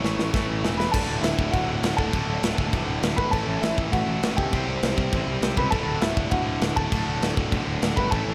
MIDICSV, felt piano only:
0, 0, Header, 1, 2, 480
1, 0, Start_track
1, 0, Key_signature, 2, "major"
1, 0, Tempo, 299401
1, 1499, Time_signature, 4, 2, 24, 8
1, 13377, End_track
2, 0, Start_track
2, 0, Title_t, "Felt piano"
2, 0, Program_c, 0, 0
2, 0, Note_on_c, 0, 73, 79
2, 0, Note_on_c, 0, 85, 104
2, 932, Note_off_c, 0, 85, 0
2, 953, Note_off_c, 0, 73, 0
2, 1242, Note_on_c, 0, 83, 100
2, 1275, Note_on_c, 0, 71, 83
2, 1469, Note_on_c, 0, 81, 109
2, 1473, Note_off_c, 0, 83, 0
2, 1490, Note_off_c, 0, 71, 0
2, 1506, Note_on_c, 0, 69, 78
2, 1939, Note_on_c, 0, 76, 80
2, 1949, Note_off_c, 0, 69, 0
2, 1962, Note_on_c, 0, 64, 63
2, 1979, Note_off_c, 0, 81, 0
2, 2404, Note_off_c, 0, 76, 0
2, 2417, Note_off_c, 0, 64, 0
2, 2436, Note_on_c, 0, 78, 105
2, 2464, Note_on_c, 0, 66, 76
2, 3132, Note_off_c, 0, 66, 0
2, 3155, Note_on_c, 0, 81, 92
2, 3171, Note_on_c, 0, 69, 71
2, 3190, Note_off_c, 0, 78, 0
2, 4063, Note_off_c, 0, 81, 0
2, 4071, Note_off_c, 0, 69, 0
2, 5073, Note_on_c, 0, 83, 106
2, 5104, Note_on_c, 0, 71, 86
2, 5309, Note_off_c, 0, 83, 0
2, 5311, Note_on_c, 0, 81, 106
2, 5326, Note_off_c, 0, 71, 0
2, 5344, Note_on_c, 0, 69, 86
2, 5771, Note_off_c, 0, 81, 0
2, 5789, Note_off_c, 0, 69, 0
2, 5796, Note_on_c, 0, 76, 94
2, 5826, Note_on_c, 0, 64, 69
2, 6270, Note_off_c, 0, 64, 0
2, 6286, Note_on_c, 0, 78, 106
2, 6303, Note_off_c, 0, 76, 0
2, 6317, Note_on_c, 0, 66, 78
2, 6979, Note_off_c, 0, 66, 0
2, 7004, Note_on_c, 0, 79, 101
2, 7030, Note_on_c, 0, 67, 63
2, 7035, Note_off_c, 0, 78, 0
2, 7907, Note_off_c, 0, 79, 0
2, 7921, Note_off_c, 0, 67, 0
2, 8930, Note_on_c, 0, 83, 94
2, 8957, Note_on_c, 0, 71, 80
2, 9146, Note_on_c, 0, 81, 101
2, 9172, Note_off_c, 0, 71, 0
2, 9173, Note_on_c, 0, 69, 82
2, 9182, Note_off_c, 0, 83, 0
2, 9608, Note_off_c, 0, 81, 0
2, 9622, Note_off_c, 0, 69, 0
2, 9636, Note_on_c, 0, 76, 80
2, 9661, Note_on_c, 0, 64, 60
2, 10106, Note_off_c, 0, 64, 0
2, 10118, Note_on_c, 0, 78, 95
2, 10142, Note_off_c, 0, 76, 0
2, 10149, Note_on_c, 0, 66, 74
2, 10813, Note_off_c, 0, 66, 0
2, 10843, Note_on_c, 0, 81, 103
2, 10868, Note_on_c, 0, 69, 68
2, 10870, Note_off_c, 0, 78, 0
2, 11745, Note_off_c, 0, 81, 0
2, 11758, Note_off_c, 0, 69, 0
2, 12764, Note_on_c, 0, 83, 93
2, 12794, Note_on_c, 0, 71, 72
2, 13000, Note_on_c, 0, 81, 80
2, 13009, Note_off_c, 0, 71, 0
2, 13017, Note_off_c, 0, 83, 0
2, 13023, Note_on_c, 0, 69, 66
2, 13377, Note_off_c, 0, 69, 0
2, 13377, Note_off_c, 0, 81, 0
2, 13377, End_track
0, 0, End_of_file